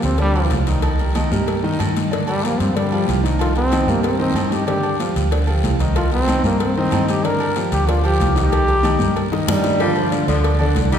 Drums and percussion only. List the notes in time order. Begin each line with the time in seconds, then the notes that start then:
0.02 cowbell, short guiro
0.18 cowbell, high conga, low agogo, long guiro
0.35 high conga, low agogo
0.51 cowbell, high conga, low timbale, short guiro
0.67 cowbell, high conga, short guiro
0.82 cowbell, high conga, low agogo, long guiro
0.99 high conga, low agogo
1.15 cowbell, high conga, low timbale, low agogo, short guiro
1.32 high conga, short guiro
1.47 cowbell, high conga, low agogo, long guiro
1.64 high conga
1.80 cowbell, high conga, low timbale, low agogo, short guiro
1.96 cowbell, high conga, short guiro
2.11 cowbell, high conga, low agogo, long guiro
2.28 high conga, low agogo
2.44 cowbell, high conga, low timbale, short guiro
2.60 cowbell, short guiro
2.76 cowbell, high conga, low agogo, long guiro
2.92 high conga, low agogo
3.07 cowbell, high conga, low timbale, short guiro
3.23 cowbell, high conga, short guiro
3.39 cowbell, high conga, low agogo, long guiro
3.56 high conga, low agogo
3.71 cowbell, high conga, low timbale, low agogo, short guiro
3.88 high conga, short guiro
4.03 cowbell, high conga, low agogo, long guiro
4.20 high conga
4.35 cowbell, high conga, low timbale, low agogo, short guiro
4.52 cowbell, high conga, short guiro
4.67 cowbell, high conga, low agogo, long guiro
4.83 high conga, low agogo
4.99 cowbell, high conga, low timbale, short guiro
5.16 cowbell, short guiro
5.31 cowbell, high conga, low agogo, long guiro
5.47 high conga, low agogo
5.64 cowbell, high conga, low timbale, short guiro
5.79 cowbell, high conga, short guiro
5.96 cowbell, high conga, low agogo, long guiro
6.12 high conga, low agogo
6.28 cowbell, high conga, low timbale, low agogo, short guiro
6.44 high conga, short guiro
6.60 cowbell, high conga, low agogo, long guiro
6.77 high conga
6.91 cowbell, high conga, low timbale, low agogo, short guiro
7.08 cowbell, high conga, short guiro
7.24 cowbell, low agogo, long guiro
7.40 high conga, low agogo
7.56 cowbell, high conga, low timbale, short guiro
7.72 cowbell, short guiro
7.87 cowbell, high conga, low agogo, long guiro
8.04 high conga, low agogo
8.20 cowbell, high conga, low timbale, short guiro
8.36 cowbell, short guiro
8.52 cowbell, high conga, low agogo
8.68 high conga, low agogo
8.83 cowbell, high conga, low timbale, low agogo, short guiro
8.99 high conga, short guiro
9.16 cowbell, low agogo, long guiro
9.32 high bongo, high conga
9.48 cowbell, low bongo, high conga, low timbale, low agogo, short guiro
9.64 cowbell, low bongo, high conga, short guiro
9.80 cowbell, low agogo, long guiro
9.96 high conga, low agogo
10.12 cowbell, high conga, low timbale, short guiro
10.28 cowbell, short guiro
10.44 cowbell, high conga, low agogo, long guiro
10.59 high conga, low agogo
10.75 cowbell, high conga, low timbale, short guiro
10.92 cowbell, high conga, short guiro